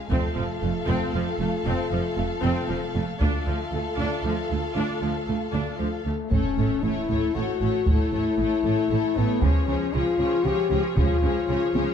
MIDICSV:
0, 0, Header, 1, 9, 480
1, 0, Start_track
1, 0, Tempo, 517241
1, 103, Time_signature, 3, 2, 24, 8
1, 11079, End_track
2, 0, Start_track
2, 0, Title_t, "Violin section"
2, 0, Program_c, 0, 48
2, 104, Note_on_c, 0, 77, 50
2, 2946, Note_off_c, 0, 77, 0
2, 2973, Note_on_c, 0, 77, 52
2, 5635, Note_off_c, 0, 77, 0
2, 5866, Note_on_c, 0, 73, 42
2, 6089, Note_off_c, 0, 73, 0
2, 6100, Note_on_c, 0, 73, 33
2, 6331, Note_off_c, 0, 73, 0
2, 6343, Note_on_c, 0, 73, 44
2, 6575, Note_off_c, 0, 73, 0
2, 6586, Note_on_c, 0, 73, 40
2, 6810, Note_off_c, 0, 73, 0
2, 6821, Note_on_c, 0, 73, 43
2, 7057, Note_off_c, 0, 73, 0
2, 7071, Note_on_c, 0, 73, 39
2, 7302, Note_off_c, 0, 73, 0
2, 7312, Note_on_c, 0, 73, 43
2, 7535, Note_off_c, 0, 73, 0
2, 7546, Note_on_c, 0, 73, 37
2, 7780, Note_off_c, 0, 73, 0
2, 7799, Note_on_c, 0, 73, 43
2, 8026, Note_off_c, 0, 73, 0
2, 8036, Note_on_c, 0, 73, 42
2, 8260, Note_off_c, 0, 73, 0
2, 8272, Note_on_c, 0, 73, 44
2, 8497, Note_off_c, 0, 73, 0
2, 8508, Note_on_c, 0, 73, 41
2, 8741, Note_off_c, 0, 73, 0
2, 8753, Note_on_c, 0, 73, 47
2, 8983, Note_off_c, 0, 73, 0
2, 8996, Note_on_c, 0, 73, 38
2, 9208, Note_off_c, 0, 73, 0
2, 9219, Note_on_c, 0, 73, 47
2, 9449, Note_off_c, 0, 73, 0
2, 9460, Note_on_c, 0, 73, 46
2, 9696, Note_off_c, 0, 73, 0
2, 9706, Note_on_c, 0, 73, 51
2, 9937, Note_off_c, 0, 73, 0
2, 9948, Note_on_c, 0, 73, 43
2, 10181, Note_off_c, 0, 73, 0
2, 10191, Note_on_c, 0, 73, 46
2, 10408, Note_off_c, 0, 73, 0
2, 10419, Note_on_c, 0, 73, 41
2, 10647, Note_off_c, 0, 73, 0
2, 10658, Note_on_c, 0, 73, 52
2, 10893, Note_off_c, 0, 73, 0
2, 10904, Note_on_c, 0, 73, 52
2, 11079, Note_off_c, 0, 73, 0
2, 11079, End_track
3, 0, Start_track
3, 0, Title_t, "Violin section"
3, 0, Program_c, 1, 48
3, 0, Note_on_c, 1, 68, 43
3, 107, Note_off_c, 1, 68, 0
3, 110, Note_on_c, 1, 69, 53
3, 2949, Note_off_c, 1, 69, 0
3, 2983, Note_on_c, 1, 69, 54
3, 5640, Note_off_c, 1, 69, 0
3, 5853, Note_on_c, 1, 69, 47
3, 6089, Note_off_c, 1, 69, 0
3, 6100, Note_on_c, 1, 69, 36
3, 6330, Note_off_c, 1, 69, 0
3, 6341, Note_on_c, 1, 69, 38
3, 6577, Note_off_c, 1, 69, 0
3, 6587, Note_on_c, 1, 69, 38
3, 6815, Note_off_c, 1, 69, 0
3, 6826, Note_on_c, 1, 69, 40
3, 7060, Note_off_c, 1, 69, 0
3, 7073, Note_on_c, 1, 69, 38
3, 7293, Note_off_c, 1, 69, 0
3, 7304, Note_on_c, 1, 69, 44
3, 7534, Note_off_c, 1, 69, 0
3, 7545, Note_on_c, 1, 69, 37
3, 7764, Note_off_c, 1, 69, 0
3, 7775, Note_on_c, 1, 69, 43
3, 8008, Note_off_c, 1, 69, 0
3, 8019, Note_on_c, 1, 69, 43
3, 8248, Note_off_c, 1, 69, 0
3, 8259, Note_on_c, 1, 69, 44
3, 8486, Note_off_c, 1, 69, 0
3, 8497, Note_on_c, 1, 69, 43
3, 8735, Note_off_c, 1, 69, 0
3, 8739, Note_on_c, 1, 68, 47
3, 8976, Note_off_c, 1, 68, 0
3, 8986, Note_on_c, 1, 68, 42
3, 9204, Note_off_c, 1, 68, 0
3, 9215, Note_on_c, 1, 68, 47
3, 9440, Note_off_c, 1, 68, 0
3, 9451, Note_on_c, 1, 68, 45
3, 9677, Note_off_c, 1, 68, 0
3, 9689, Note_on_c, 1, 68, 45
3, 9922, Note_off_c, 1, 68, 0
3, 9934, Note_on_c, 1, 68, 45
3, 10161, Note_off_c, 1, 68, 0
3, 10172, Note_on_c, 1, 68, 51
3, 10402, Note_off_c, 1, 68, 0
3, 10413, Note_on_c, 1, 68, 45
3, 10649, Note_off_c, 1, 68, 0
3, 10660, Note_on_c, 1, 68, 48
3, 10889, Note_off_c, 1, 68, 0
3, 10900, Note_on_c, 1, 68, 49
3, 11079, Note_off_c, 1, 68, 0
3, 11079, End_track
4, 0, Start_track
4, 0, Title_t, "French horn section"
4, 0, Program_c, 2, 60
4, 99, Note_on_c, 2, 65, 55
4, 101, Note_on_c, 2, 57, 48
4, 2821, Note_off_c, 2, 57, 0
4, 2821, Note_off_c, 2, 65, 0
4, 2978, Note_on_c, 2, 65, 54
4, 2987, Note_on_c, 2, 57, 51
4, 5583, Note_off_c, 2, 65, 0
4, 5588, Note_off_c, 2, 57, 0
4, 5607, Note_on_c, 2, 57, 52
4, 5837, Note_off_c, 2, 57, 0
4, 5855, Note_on_c, 2, 61, 66
4, 6334, Note_on_c, 2, 64, 62
4, 6339, Note_off_c, 2, 61, 0
4, 6818, Note_off_c, 2, 64, 0
4, 6820, Note_on_c, 2, 66, 74
4, 7301, Note_off_c, 2, 66, 0
4, 7327, Note_on_c, 2, 64, 74
4, 8491, Note_off_c, 2, 64, 0
4, 8517, Note_on_c, 2, 59, 66
4, 8750, Note_off_c, 2, 59, 0
4, 8750, Note_on_c, 2, 61, 62
4, 9226, Note_off_c, 2, 61, 0
4, 9226, Note_on_c, 2, 65, 73
4, 9698, Note_on_c, 2, 67, 86
4, 9704, Note_off_c, 2, 65, 0
4, 10044, Note_off_c, 2, 67, 0
4, 10189, Note_on_c, 2, 65, 74
4, 11079, Note_off_c, 2, 65, 0
4, 11079, End_track
5, 0, Start_track
5, 0, Title_t, "Viola section"
5, 0, Program_c, 3, 48
5, 99, Note_on_c, 3, 60, 51
5, 324, Note_off_c, 3, 60, 0
5, 332, Note_on_c, 3, 53, 48
5, 406, Note_off_c, 3, 53, 0
5, 574, Note_on_c, 3, 57, 38
5, 648, Note_off_c, 3, 57, 0
5, 819, Note_on_c, 3, 60, 66
5, 1044, Note_off_c, 3, 60, 0
5, 1063, Note_on_c, 3, 53, 46
5, 1138, Note_off_c, 3, 53, 0
5, 1306, Note_on_c, 3, 57, 46
5, 1380, Note_off_c, 3, 57, 0
5, 1545, Note_on_c, 3, 60, 53
5, 1767, Note_off_c, 3, 60, 0
5, 1786, Note_on_c, 3, 53, 45
5, 1860, Note_off_c, 3, 53, 0
5, 2025, Note_on_c, 3, 57, 47
5, 2099, Note_off_c, 3, 57, 0
5, 2267, Note_on_c, 3, 60, 68
5, 2488, Note_off_c, 3, 60, 0
5, 2505, Note_on_c, 3, 53, 48
5, 2579, Note_off_c, 3, 53, 0
5, 2742, Note_on_c, 3, 57, 48
5, 2816, Note_off_c, 3, 57, 0
5, 2986, Note_on_c, 3, 62, 57
5, 3208, Note_off_c, 3, 62, 0
5, 3227, Note_on_c, 3, 53, 46
5, 3302, Note_off_c, 3, 53, 0
5, 3471, Note_on_c, 3, 57, 38
5, 3545, Note_off_c, 3, 57, 0
5, 3711, Note_on_c, 3, 62, 58
5, 3930, Note_off_c, 3, 62, 0
5, 3952, Note_on_c, 3, 53, 39
5, 4026, Note_off_c, 3, 53, 0
5, 4185, Note_on_c, 3, 57, 36
5, 4259, Note_off_c, 3, 57, 0
5, 4424, Note_on_c, 3, 62, 50
5, 4647, Note_off_c, 3, 62, 0
5, 4665, Note_on_c, 3, 53, 35
5, 4739, Note_off_c, 3, 53, 0
5, 4899, Note_on_c, 3, 57, 30
5, 4973, Note_off_c, 3, 57, 0
5, 5141, Note_on_c, 3, 62, 41
5, 5365, Note_off_c, 3, 62, 0
5, 5375, Note_on_c, 3, 53, 35
5, 5449, Note_off_c, 3, 53, 0
5, 5632, Note_on_c, 3, 57, 29
5, 5707, Note_off_c, 3, 57, 0
5, 5868, Note_on_c, 3, 57, 46
5, 6095, Note_off_c, 3, 57, 0
5, 6107, Note_on_c, 3, 57, 43
5, 6334, Note_off_c, 3, 57, 0
5, 6345, Note_on_c, 3, 57, 41
5, 6577, Note_off_c, 3, 57, 0
5, 6588, Note_on_c, 3, 57, 40
5, 6812, Note_off_c, 3, 57, 0
5, 6823, Note_on_c, 3, 57, 41
5, 7051, Note_off_c, 3, 57, 0
5, 7062, Note_on_c, 3, 57, 37
5, 7297, Note_off_c, 3, 57, 0
5, 7307, Note_on_c, 3, 57, 46
5, 7531, Note_off_c, 3, 57, 0
5, 7542, Note_on_c, 3, 57, 43
5, 7771, Note_off_c, 3, 57, 0
5, 7783, Note_on_c, 3, 57, 42
5, 8014, Note_off_c, 3, 57, 0
5, 8025, Note_on_c, 3, 57, 43
5, 8251, Note_off_c, 3, 57, 0
5, 8262, Note_on_c, 3, 57, 42
5, 8494, Note_off_c, 3, 57, 0
5, 8505, Note_on_c, 3, 57, 41
5, 8739, Note_off_c, 3, 57, 0
5, 8740, Note_on_c, 3, 53, 46
5, 8971, Note_off_c, 3, 53, 0
5, 8982, Note_on_c, 3, 53, 45
5, 9206, Note_off_c, 3, 53, 0
5, 9217, Note_on_c, 3, 53, 47
5, 9440, Note_off_c, 3, 53, 0
5, 9451, Note_on_c, 3, 53, 48
5, 9692, Note_off_c, 3, 53, 0
5, 9701, Note_on_c, 3, 53, 50
5, 9934, Note_off_c, 3, 53, 0
5, 9945, Note_on_c, 3, 53, 44
5, 10173, Note_off_c, 3, 53, 0
5, 10185, Note_on_c, 3, 53, 51
5, 10409, Note_off_c, 3, 53, 0
5, 10420, Note_on_c, 3, 53, 46
5, 10647, Note_off_c, 3, 53, 0
5, 10658, Note_on_c, 3, 53, 45
5, 10893, Note_off_c, 3, 53, 0
5, 10904, Note_on_c, 3, 53, 53
5, 11079, Note_off_c, 3, 53, 0
5, 11079, End_track
6, 0, Start_track
6, 0, Title_t, "Cello section"
6, 0, Program_c, 4, 48
6, 100, Note_on_c, 4, 41, 57
6, 174, Note_off_c, 4, 41, 0
6, 345, Note_on_c, 4, 41, 38
6, 419, Note_off_c, 4, 41, 0
6, 584, Note_on_c, 4, 41, 43
6, 658, Note_off_c, 4, 41, 0
6, 819, Note_on_c, 4, 41, 57
6, 893, Note_off_c, 4, 41, 0
6, 1069, Note_on_c, 4, 41, 43
6, 1143, Note_off_c, 4, 41, 0
6, 1302, Note_on_c, 4, 41, 43
6, 1377, Note_off_c, 4, 41, 0
6, 1539, Note_on_c, 4, 41, 60
6, 1613, Note_off_c, 4, 41, 0
6, 1778, Note_on_c, 4, 41, 42
6, 1853, Note_off_c, 4, 41, 0
6, 2015, Note_on_c, 4, 41, 46
6, 2089, Note_off_c, 4, 41, 0
6, 2259, Note_on_c, 4, 41, 60
6, 2333, Note_off_c, 4, 41, 0
6, 2494, Note_on_c, 4, 41, 43
6, 2568, Note_off_c, 4, 41, 0
6, 2734, Note_on_c, 4, 41, 44
6, 2808, Note_off_c, 4, 41, 0
6, 2977, Note_on_c, 4, 38, 65
6, 3051, Note_off_c, 4, 38, 0
6, 3225, Note_on_c, 4, 38, 43
6, 3300, Note_off_c, 4, 38, 0
6, 3457, Note_on_c, 4, 38, 42
6, 3532, Note_off_c, 4, 38, 0
6, 3694, Note_on_c, 4, 38, 49
6, 3769, Note_off_c, 4, 38, 0
6, 3940, Note_on_c, 4, 38, 38
6, 4014, Note_off_c, 4, 38, 0
6, 4187, Note_on_c, 4, 38, 36
6, 4261, Note_off_c, 4, 38, 0
6, 4420, Note_on_c, 4, 38, 48
6, 4494, Note_off_c, 4, 38, 0
6, 4664, Note_on_c, 4, 38, 34
6, 4739, Note_off_c, 4, 38, 0
6, 4905, Note_on_c, 4, 38, 36
6, 4979, Note_off_c, 4, 38, 0
6, 5145, Note_on_c, 4, 38, 48
6, 5220, Note_off_c, 4, 38, 0
6, 5385, Note_on_c, 4, 38, 32
6, 5459, Note_off_c, 4, 38, 0
6, 5624, Note_on_c, 4, 38, 32
6, 5698, Note_off_c, 4, 38, 0
6, 5864, Note_on_c, 4, 45, 45
6, 5938, Note_off_c, 4, 45, 0
6, 6107, Note_on_c, 4, 45, 48
6, 6181, Note_off_c, 4, 45, 0
6, 6343, Note_on_c, 4, 45, 47
6, 6417, Note_off_c, 4, 45, 0
6, 6582, Note_on_c, 4, 45, 42
6, 6656, Note_off_c, 4, 45, 0
6, 6823, Note_on_c, 4, 45, 47
6, 6897, Note_off_c, 4, 45, 0
6, 7064, Note_on_c, 4, 45, 45
6, 7138, Note_off_c, 4, 45, 0
6, 7302, Note_on_c, 4, 45, 52
6, 7376, Note_off_c, 4, 45, 0
6, 7535, Note_on_c, 4, 45, 46
6, 7610, Note_off_c, 4, 45, 0
6, 7775, Note_on_c, 4, 45, 50
6, 7850, Note_off_c, 4, 45, 0
6, 8021, Note_on_c, 4, 45, 43
6, 8095, Note_off_c, 4, 45, 0
6, 8258, Note_on_c, 4, 45, 52
6, 8332, Note_off_c, 4, 45, 0
6, 8497, Note_on_c, 4, 45, 51
6, 8572, Note_off_c, 4, 45, 0
6, 8737, Note_on_c, 4, 49, 53
6, 8812, Note_off_c, 4, 49, 0
6, 8976, Note_on_c, 4, 49, 48
6, 9050, Note_off_c, 4, 49, 0
6, 9221, Note_on_c, 4, 49, 50
6, 9295, Note_off_c, 4, 49, 0
6, 9458, Note_on_c, 4, 49, 48
6, 9532, Note_off_c, 4, 49, 0
6, 9689, Note_on_c, 4, 49, 52
6, 9763, Note_off_c, 4, 49, 0
6, 9934, Note_on_c, 4, 49, 48
6, 10008, Note_off_c, 4, 49, 0
6, 10175, Note_on_c, 4, 49, 53
6, 10249, Note_off_c, 4, 49, 0
6, 10419, Note_on_c, 4, 49, 52
6, 10493, Note_off_c, 4, 49, 0
6, 10652, Note_on_c, 4, 49, 56
6, 10726, Note_off_c, 4, 49, 0
6, 10897, Note_on_c, 4, 49, 48
6, 10971, Note_off_c, 4, 49, 0
6, 11079, End_track
7, 0, Start_track
7, 0, Title_t, "Double bass section"
7, 0, Program_c, 5, 48
7, 98, Note_on_c, 5, 29, 63
7, 172, Note_off_c, 5, 29, 0
7, 337, Note_on_c, 5, 29, 40
7, 411, Note_off_c, 5, 29, 0
7, 582, Note_on_c, 5, 29, 42
7, 656, Note_off_c, 5, 29, 0
7, 815, Note_on_c, 5, 29, 60
7, 889, Note_off_c, 5, 29, 0
7, 1058, Note_on_c, 5, 29, 43
7, 1132, Note_off_c, 5, 29, 0
7, 1295, Note_on_c, 5, 29, 44
7, 1369, Note_off_c, 5, 29, 0
7, 1537, Note_on_c, 5, 29, 66
7, 1612, Note_off_c, 5, 29, 0
7, 1777, Note_on_c, 5, 29, 42
7, 1852, Note_off_c, 5, 29, 0
7, 2022, Note_on_c, 5, 29, 48
7, 2096, Note_off_c, 5, 29, 0
7, 2260, Note_on_c, 5, 29, 63
7, 2334, Note_off_c, 5, 29, 0
7, 2502, Note_on_c, 5, 29, 44
7, 2576, Note_off_c, 5, 29, 0
7, 2739, Note_on_c, 5, 29, 38
7, 2814, Note_off_c, 5, 29, 0
7, 2976, Note_on_c, 5, 38, 65
7, 3050, Note_off_c, 5, 38, 0
7, 3221, Note_on_c, 5, 38, 41
7, 3295, Note_off_c, 5, 38, 0
7, 3456, Note_on_c, 5, 38, 44
7, 3530, Note_off_c, 5, 38, 0
7, 3695, Note_on_c, 5, 38, 54
7, 3770, Note_off_c, 5, 38, 0
7, 3932, Note_on_c, 5, 38, 36
7, 4006, Note_off_c, 5, 38, 0
7, 4176, Note_on_c, 5, 38, 36
7, 4250, Note_off_c, 5, 38, 0
7, 4412, Note_on_c, 5, 38, 50
7, 4486, Note_off_c, 5, 38, 0
7, 4653, Note_on_c, 5, 38, 33
7, 4728, Note_off_c, 5, 38, 0
7, 4899, Note_on_c, 5, 38, 35
7, 4973, Note_off_c, 5, 38, 0
7, 5140, Note_on_c, 5, 38, 42
7, 5214, Note_off_c, 5, 38, 0
7, 5382, Note_on_c, 5, 38, 31
7, 5456, Note_off_c, 5, 38, 0
7, 5624, Note_on_c, 5, 38, 30
7, 5699, Note_off_c, 5, 38, 0
7, 5864, Note_on_c, 5, 33, 50
7, 5938, Note_off_c, 5, 33, 0
7, 6101, Note_on_c, 5, 33, 46
7, 6175, Note_off_c, 5, 33, 0
7, 6338, Note_on_c, 5, 33, 51
7, 6412, Note_off_c, 5, 33, 0
7, 6586, Note_on_c, 5, 33, 44
7, 6660, Note_off_c, 5, 33, 0
7, 6828, Note_on_c, 5, 33, 47
7, 6903, Note_off_c, 5, 33, 0
7, 7068, Note_on_c, 5, 33, 43
7, 7142, Note_off_c, 5, 33, 0
7, 7305, Note_on_c, 5, 33, 52
7, 7379, Note_off_c, 5, 33, 0
7, 7546, Note_on_c, 5, 33, 48
7, 7620, Note_off_c, 5, 33, 0
7, 7782, Note_on_c, 5, 33, 49
7, 7856, Note_off_c, 5, 33, 0
7, 8017, Note_on_c, 5, 33, 48
7, 8092, Note_off_c, 5, 33, 0
7, 8267, Note_on_c, 5, 33, 51
7, 8341, Note_off_c, 5, 33, 0
7, 8505, Note_on_c, 5, 33, 47
7, 8579, Note_off_c, 5, 33, 0
7, 8742, Note_on_c, 5, 37, 58
7, 8816, Note_off_c, 5, 37, 0
7, 8979, Note_on_c, 5, 37, 46
7, 9053, Note_off_c, 5, 37, 0
7, 9220, Note_on_c, 5, 37, 53
7, 9294, Note_off_c, 5, 37, 0
7, 9457, Note_on_c, 5, 37, 46
7, 9531, Note_off_c, 5, 37, 0
7, 9698, Note_on_c, 5, 37, 51
7, 9772, Note_off_c, 5, 37, 0
7, 9942, Note_on_c, 5, 37, 46
7, 10016, Note_off_c, 5, 37, 0
7, 10180, Note_on_c, 5, 37, 62
7, 10254, Note_off_c, 5, 37, 0
7, 10422, Note_on_c, 5, 37, 53
7, 10497, Note_off_c, 5, 37, 0
7, 10659, Note_on_c, 5, 37, 53
7, 10733, Note_off_c, 5, 37, 0
7, 10901, Note_on_c, 5, 37, 51
7, 10975, Note_off_c, 5, 37, 0
7, 11079, End_track
8, 0, Start_track
8, 0, Title_t, "Impact"
8, 0, Program_c, 6, 103
8, 5860, Note_on_c, 6, 60, 51
8, 7301, Note_off_c, 6, 60, 0
8, 11079, End_track
9, 0, Start_track
9, 0, Title_t, "Taiko and cinematic ensemble drums"
9, 107, Note_on_c, 9, 41, 50
9, 200, Note_off_c, 9, 41, 0
9, 826, Note_on_c, 9, 41, 32
9, 919, Note_off_c, 9, 41, 0
9, 2980, Note_on_c, 9, 41, 55
9, 3073, Note_off_c, 9, 41, 0
9, 5863, Note_on_c, 9, 41, 51
9, 5956, Note_off_c, 9, 41, 0
9, 6590, Note_on_c, 9, 41, 32
9, 6682, Note_off_c, 9, 41, 0
9, 7301, Note_on_c, 9, 41, 74
9, 7394, Note_off_c, 9, 41, 0
9, 8740, Note_on_c, 9, 41, 84
9, 8833, Note_off_c, 9, 41, 0
9, 10185, Note_on_c, 9, 41, 80
9, 10278, Note_off_c, 9, 41, 0
9, 10905, Note_on_c, 9, 48, 61
9, 10998, Note_off_c, 9, 48, 0
9, 11079, End_track
0, 0, End_of_file